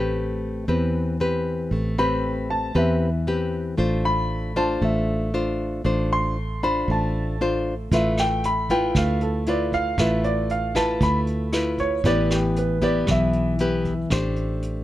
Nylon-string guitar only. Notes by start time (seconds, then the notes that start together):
Already playing: A3 C4 G4 B4
0.68 E3 C4 G4 B4
1.20 C4 G4 B4
1.72 A3
1.98 C4 G4 B4
2.75 E3 C4 G4 B4
3.27 C4 G4 B4
3.78 A3 D4 F4 C5
4.56 D4 F4 C5
4.82 A3
5.34 D4 F4 C5
5.84 A3 D4 F4 C5
6.63 D4 F4 C5
6.90 A3
7.41 D4 F4 C5
7.93 A3 E4 F4 B4
8.70 E4 F4 B4
8.96 A3
9.47 E4 F4 B4
9.99 A3 E4 F4 B4
10.75 E4 F4 B4
11.01 A3
11.53 E4 F4 B4
12.05 E3 B3 E4 G4 B4
12.82 B3 E4 G4 B4
13.08 E3
13.60 B3 E4 G4 B4
14.11 A3 D4 G4 C5